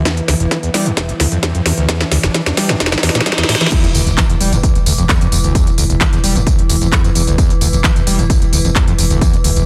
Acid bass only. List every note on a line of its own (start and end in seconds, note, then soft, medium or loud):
0.05 0.19 E2 medium
0.17 0.21 D2 medium
0.28 0.35 D2 loud
0.40 0.46 E1 loud
0.51 0.58 E3 medium
0.63 0.69 E2 medium
0.74 0.87 G3 loud
0.86 0.92 E2 medium
0.97 1.10 E1 medium
1.09 1.13 D2 medium
1.20 1.26 D2 loud
1.32 1.38 F2 medium
1.43 1.53 E2 medium
1.55 1.61 F2 loud
1.66 1.72 E2 medium
1.78 1.87 D2 medium
1.89 2.02 E2 medium
2.00 2.04 D2 medium
2.11 2.18 D2 loud
2.23 2.29 E1 loud
2.34 2.41 E3 medium
2.46 2.52 E2 medium
2.57 2.71 G3 loud
2.69 2.75 E2 medium
2.80 2.94 E1 medium
2.92 2.96 D2 medium
3.03 3.10 E2 medium
3.15 3.21 A#2 medium
3.26 3.33 G3 medium
3.38 3.44 E2 medium
3.49 3.55 A2 medium
3.61 3.67 E3 medium
3.72 3.85 E2 medium
3.84 3.87 D2 medium
3.95 4.01 D2 loud
4.07 4.13 E1 loud
4.18 4.24 E3 medium
4.30 4.36 E2 medium
4.41 4.54 G3 loud
4.52 4.58 E2 medium
4.63 4.77 E1 medium
4.75 4.79 D2 medium
4.86 4.93 D2 loud
4.98 5.04 F2 medium
5.09 5.19 E2 medium
5.21 5.27 F2 loud
5.32 5.39 E2 medium
5.44 5.53 D2 medium
5.55 5.68 E2 medium
5.67 5.70 D2 medium
5.78 5.84 D2 loud
5.90 5.96 E1 loud
6.01 6.07 E3 medium
6.13 6.19 E2 medium
6.24 6.37 G3 loud
6.36 6.42 E2 medium
6.47 6.60 E1 medium
6.58 6.62 D2 medium
6.69 6.76 D2 loud
6.81 6.88 F2 medium
6.92 7.02 E2 medium
7.04 7.10 F2 loud
7.15 7.22 E2 medium
7.27 7.36 D2 medium
7.38 7.52 E2 medium
7.50 7.54 D2 medium
7.61 7.68 D2 loud
7.73 7.79 E1 loud
7.84 7.91 E3 medium
7.96 8.02 E2 medium
8.07 8.20 G3 loud
8.19 8.25 E2 medium
8.30 8.43 E1 medium
8.42 8.45 D2 medium
8.53 8.59 D2 medium
8.65 8.71 F2 medium
8.76 8.85 E2 medium
8.88 8.94 F2 loud
8.99 9.05 E2 medium
9.10 9.20 D2 medium
9.21 9.35 E2 medium
9.33 9.37 D2 medium
9.44 9.51 D2 loud
9.56 9.62 E1 loud